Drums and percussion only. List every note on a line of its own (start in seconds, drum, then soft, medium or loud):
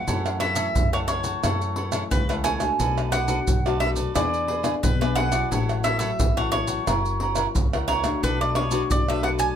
0.08 pandeiro medium
0.08 maracas medium
0.08 surdo medium
0.26 pandeiro soft
0.26 tamborim medium
0.26 maracas soft
0.40 pandeiro medium
0.40 tamborim medium
0.56 pandeiro medium
0.56 maracas medium
0.76 pandeiro medium
0.76 maracas medium
0.76 surdo loud
0.93 pandeiro soft
0.93 tamborim medium
0.93 maracas soft
1.08 pandeiro medium
1.08 tamborim medium
1.08 maracas medium
1.24 pandeiro medium
1.24 maracas medium
1.44 pandeiro medium
1.44 tamborim medium
1.44 maracas medium
1.44 surdo medium
1.62 pandeiro soft
1.62 maracas soft
1.76 pandeiro medium
1.92 pandeiro medium
1.92 tamborim medium
1.92 maracas medium
2.11 pandeiro medium
2.11 maracas medium
2.11 surdo medium
2.30 pandeiro soft
2.30 tamborim medium
2.30 maracas soft
2.44 pandeiro medium
2.44 tamborim medium
2.44 maracas medium
2.60 pandeiro medium
2.60 tamborim medium
2.60 maracas medium
2.80 pandeiro medium
2.80 maracas medium
2.80 surdo medium
2.98 pandeiro soft
2.98 tamborim medium
2.98 maracas soft
3.12 pandeiro medium
3.12 tamborim medium
3.12 maracas medium
3.28 pandeiro medium
3.28 maracas medium
3.47 pandeiro medium
3.47 maracas medium
3.47 surdo loud
3.66 pandeiro soft
3.66 tamborim medium
3.66 maracas soft
3.80 pandeiro medium
3.80 tamborim medium
3.96 pandeiro medium
3.96 maracas medium
4.16 pandeiro medium
4.16 tamborim medium
4.16 maracas medium
4.16 surdo medium
4.34 pandeiro soft
4.34 maracas soft
4.48 pandeiro medium
4.64 pandeiro medium
4.64 tamborim medium
4.64 maracas medium
4.84 pandeiro medium
4.84 maracas medium
4.84 surdo medium
5.02 pandeiro soft
5.02 tamborim medium
5.02 maracas soft
5.16 pandeiro medium
5.16 tamborim medium
5.32 pandeiro medium
5.32 tamborim medium
5.32 maracas medium
5.52 pandeiro medium
5.52 maracas medium
5.52 surdo medium
5.69 pandeiro soft
5.69 tamborim medium
5.69 maracas soft
5.84 pandeiro medium
5.84 tamborim medium
5.84 maracas medium
6.00 pandeiro medium
6.00 maracas medium
6.20 pandeiro medium
6.20 maracas medium
6.20 surdo loud
6.37 pandeiro soft
6.37 tamborim medium
6.37 maracas soft
6.52 pandeiro medium
6.52 tamborim medium
6.68 pandeiro medium
6.68 maracas medium
6.87 pandeiro medium
6.87 tamborim medium
6.87 maracas medium
6.87 surdo medium
7.05 pandeiro soft
7.05 maracas soft
7.20 pandeiro medium
7.35 pandeiro medium
7.35 tamborim medium
7.35 maracas medium
7.55 pandeiro medium
7.55 maracas medium
7.55 surdo medium
7.73 pandeiro soft
7.73 tamborim medium
7.73 maracas soft
7.88 pandeiro medium
7.88 tamborim medium
8.04 pandeiro medium
8.04 tamborim medium
8.04 maracas medium
8.24 pandeiro medium
8.24 maracas medium
8.24 surdo medium
8.41 pandeiro soft
8.41 tamborim medium
8.41 maracas soft
8.55 pandeiro medium
8.55 tamborim medium
8.71 pandeiro medium
8.71 maracas medium
8.91 pandeiro medium
8.91 maracas medium
8.91 surdo loud
9.09 pandeiro soft
9.09 tamborim medium
9.09 maracas soft
9.23 pandeiro medium
9.23 tamborim medium
9.39 pandeiro medium
9.39 maracas medium